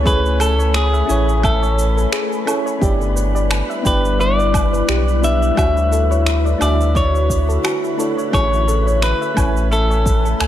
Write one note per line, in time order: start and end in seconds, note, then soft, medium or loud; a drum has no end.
0.00 1.03 C#2 medium
0.00 0.03 A3 medium
0.00 2.78 A3 medium
0.00 1.04 A3 medium
0.00 0.04 C#4 medium
0.00 0.06 E4 medium
0.00 2.47 G#4 medium
0.00 10.47 B4 medium
0.00 0.08 C#5 loud
0.00 2.77 C#5 medium
0.00 0.07 G#5 medium
0.00 2.78 G#5 medium
0.00 10.47 B5 medium
0.04 1.05 C#4 medium
0.04 1.05 E4 medium
0.04 0.16 G#4 loud
0.04 0.41 B4 loud
0.04 1.07 C#5 loud
0.04 1.06 G#5 medium
0.04 kick loud
0.04 cabasa soft
0.26 cabasa soft
0.40 0.57 A4 medium
0.40 0.76 A4 loud
0.40 cabasa medium
0.40 low woodblock medium
0.59 0.67 C#5 medium
0.59 cabasa soft
0.74 1.44 G#4 medium
0.74 finger snap loud
0.74 cabasa soft
0.93 1.07 E5 medium
0.93 cabasa soft
1.06 2.06 A1 loud
1.06 2.42 A3 loud
1.06 2.42 C#4 medium
1.06 2.43 E4 medium
1.06 1.26 G#5 medium
1.06 2.44 G#5 medium
1.06 cabasa medium
1.11 2.44 C#5 loud
1.29 cabasa soft
1.43 2.44 A4 medium
1.43 1.62 E5 loud
1.43 kick loud
1.43 cabasa soft
1.43 low woodblock medium
1.63 1.77 C#5 medium
1.63 cabasa soft
1.79 cabasa medium
1.97 2.05 A4 medium
1.97 cabasa soft
2.12 2.30 G#4 medium
2.12 finger snap loud
2.12 cabasa soft
2.33 cabasa soft
2.45 2.57 A3 medium
2.45 2.57 C#4 medium
2.45 2.57 E4 medium
2.45 2.58 G#4 medium
2.45 2.64 A4 medium
2.45 2.58 C#5 medium
2.45 cabasa medium
2.45 low woodblock medium
2.66 2.74 C#5 medium
2.66 cabasa soft
2.79 3.62 G1 loud
2.79 5.55 G3 medium
2.79 3.80 B3 medium
2.79 3.80 D4 medium
2.79 3.81 E4 medium
2.79 8.29 E4 medium
2.79 2.92 G4 loud
2.79 3.82 G4 medium
2.79 5.55 B4 medium
2.79 kick loud
2.79 cabasa soft
2.84 3.82 D5 medium
3.01 cabasa soft
3.16 3.33 B4 medium
3.16 cabasa medium
3.35 3.43 D5 medium
3.35 cabasa soft
3.51 finger snap loud
3.51 cabasa soft
3.51 low woodblock medium
3.70 3.83 E5 medium
3.70 cabasa soft
3.82 4.82 G1 loud
3.82 5.18 B3 medium
3.82 5.18 D4 medium
3.82 5.19 E4 medium
3.82 5.20 G4 medium
3.82 4.02 G5 medium
3.82 kick loud
3.82 cabasa medium
3.87 4.20 B4 medium
3.87 5.20 D5 loud
4.05 cabasa soft
4.19 5.24 D5 loud
4.19 4.37 E5 medium
4.19 cabasa soft
4.38 4.53 D5 medium
4.38 cabasa soft
4.54 kick loud
4.54 cabasa medium
4.54 low woodblock medium
4.73 4.81 B4 medium
4.73 cabasa soft
4.88 5.51 B1 medium
4.88 5.06 G4 medium
4.88 finger snap medium
4.88 cabasa soft
5.08 cabasa soft
5.21 5.33 B3 medium
5.21 5.33 D4 medium
5.21 5.33 E4 medium
5.21 5.34 G4 medium
5.21 5.40 B4 medium
5.21 5.34 D5 medium
5.21 5.57 E5 loud
5.21 cabasa medium
5.42 5.50 D5 medium
5.42 cabasa soft
5.55 6.54 D2 medium
5.55 8.30 D3 medium
5.55 6.56 A3 medium
5.55 6.56 D4 medium
5.55 6.57 E4 medium
5.55 8.30 F#4 medium
5.55 5.68 F#4 loud
5.55 6.58 F#4 medium
5.55 10.47 E5 medium
5.55 6.62 E5 loud
5.55 kick loud
5.55 cabasa soft
5.55 low woodblock medium
5.60 6.58 C#5 medium
5.77 cabasa soft
5.92 6.09 A4 medium
5.92 cabasa medium
6.11 6.19 C#5 medium
6.11 cabasa soft
6.26 finger snap loud
6.26 cabasa soft
6.45 6.59 D5 medium
6.45 cabasa soft
6.58 7.58 D2 medium
6.58 7.94 A3 medium
6.58 7.94 D4 medium
6.58 7.95 E4 medium
6.58 7.96 F#4 medium
6.58 6.96 D5 medium
6.58 6.78 E5 medium
6.58 cabasa medium
6.58 low woodblock medium
6.63 7.96 E5 loud
6.81 cabasa soft
6.95 7.95 C#5 medium
6.95 7.13 D5 loud
6.95 kick loud
6.95 cabasa soft
7.14 7.29 C#5 medium
7.14 cabasa soft
7.30 kick medium
7.30 cabasa medium
7.49 7.57 A4 medium
7.49 cabasa soft
7.64 7.81 F#4 medium
7.64 finger snap loud
7.64 cabasa soft
7.64 low woodblock medium
7.84 cabasa soft
7.97 8.09 A3 medium
7.97 8.09 D4 medium
7.97 8.09 E4 medium
7.97 8.10 F#4 medium
7.97 8.16 A4 medium
7.97 8.10 C#5 medium
7.97 cabasa medium
8.17 8.26 C#5 medium
8.17 cabasa soft
8.31 9.13 A1 medium
8.31 9.32 A3 medium
8.31 10.47 A3 medium
8.31 9.32 C#4 medium
8.31 9.33 E4 medium
8.31 8.43 G#4 loud
8.31 9.34 G#4 medium
8.31 9.03 C#5 loud
8.31 10.47 G#5 medium
8.31 kick loud
8.31 cabasa soft
8.31 low woodblock medium
8.36 9.34 C#5 medium
8.53 cabasa soft
8.68 8.85 A4 medium
8.68 cabasa medium
8.87 8.95 C#5 medium
8.87 cabasa soft
9.02 9.68 B4 loud
9.02 finger snap loud
9.02 cabasa soft
9.21 9.35 E5 medium
9.21 cabasa soft
9.34 10.34 A1 loud
9.34 10.47 A3 loud
9.34 10.47 C#4 medium
9.34 10.47 E4 medium
9.34 9.54 G#5 medium
9.34 10.47 G#5 medium
9.34 kick loud
9.34 cabasa medium
9.34 low woodblock medium
9.39 10.47 C#5 loud
9.57 cabasa soft
9.71 10.47 A4 loud
9.71 9.89 E5 loud
9.71 cabasa soft
9.90 10.05 C#5 medium
9.90 cabasa soft
10.06 kick loud
10.06 cabasa medium
10.25 10.33 A4 medium
10.25 cabasa soft
10.40 10.47 C#2 medium
10.40 10.47 G#5 medium
10.40 finger snap medium
10.40 cabasa soft
10.40 low woodblock medium